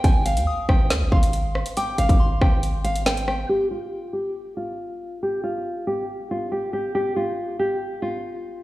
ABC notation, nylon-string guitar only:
X:1
M:4/4
L:1/8
Q:1/4=139
K:Ablyd
V:1 name="Nylon-string guitar"
g f2 g2 f3 | g f2 g2 f g g | G F2 G2 F3 | G F2 G2 F G G |
G F2 G2 F3 |]